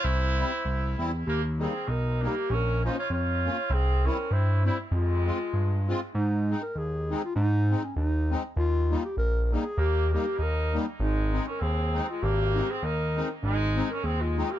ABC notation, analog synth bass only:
X:1
M:2/4
L:1/8
Q:"Swing" 1/4=99
K:Fm
V:1 name="Analog synth bass" clef=bass
C,,2 C,, =E,, | E,,2 =B,,,2 | B,,,2 F,,2 | C,,2 G,,2 |
F,,2 G,,2 | [K:Ab] A,,2 E,,2 | A,,2 E,,2 | E,,2 B,,,2 |
E,,2 E,,2 | A,,,2 E,,2 | A,,,2 E,,2 | A,,,2 E,,2 |]